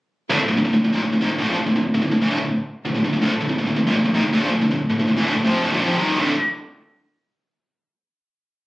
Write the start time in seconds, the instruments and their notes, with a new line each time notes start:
0.30 distorted electric guitar D2 A2
0.40 muted distorted electric guitar stroke
0.48 distorted electric guitar D2 A2
0.57 distorted electric guitar D2 A2
0.65 distorted electric guitar D2 A2
0.73 distorted electric guitar D2 A2
0.85 distorted electric guitar D2 A2
0.93 distorted electric guitar D#2 A#2
1.02 distorted electric guitar D2 A2
1.13 distorted electric guitar D2 A2
1.21 distorted electric guitar G#2 D#3
1.30 distorted electric guitar D2 A2
1.38 distorted electric guitar D2 A2
1.48 distorted electric guitar A#2 F3
1.58 distorted electric guitar D2 A2
1.67 distorted electric guitar D2 A2
1.76 distorted electric guitar D2 A2
1.94 distorted electric guitar D2 A2
2.02 distorted electric guitar D2 A2
2.12 distorted electric guitar D2 A2
2.22 distorted electric guitar A2 E3
2.30 distorted electric guitar D2 A2
2.39 distorted electric guitar D2 A2
2.85 distorted electric guitar D2 A2
2.95 distorted electric guitar D2 A2
3.05 distorted electric guitar D2 A2
3.13 distorted electric guitar D2 A2
3.22 distorted electric guitar D2 A2
3.32 muted distorted electric guitar stroke
3.41 distorted electric guitar D2 A2
3.49 distorted electric guitar D2 A2
3.58 distorted electric guitar D2 A2
3.66 distorted electric guitar D2 A2
3.76 distorted electric guitar D2 A2
3.87 distorted electric guitar D#2 A#2
3.96 distorted electric guitar D2 A2
4.05 distorted electric guitar D2 A2
4.14 distorted electric guitar G#2 D#3
4.24 distorted electric guitar D2 A2
4.33 distorted electric guitar D2 A2
4.42 distorted electric guitar A#2 F3
4.51 distorted electric guitar D2 A2
4.61 distorted electric guitar D2 A2
4.71 distorted electric guitar D2 A2
4.90 distorted electric guitar D2 A2
4.99 distorted electric guitar D2 A2
5.07 distorted electric guitar D2 A2
5.16 distorted electric guitar A2 E3
5.25 distorted electric guitar D2 A2
5.35 distorted electric guitar D2 A2
5.45 distorted electric guitar F2 C3 F3
5.62 distorted electric guitar D2 A2
5.72 distorted electric guitar D#2 A#2
5.81 distorted electric guitar F2 C3 F3
5.98 distorted electric guitar D#2 A#2 D#3
6.16 distorted electric guitar D2 A2 D3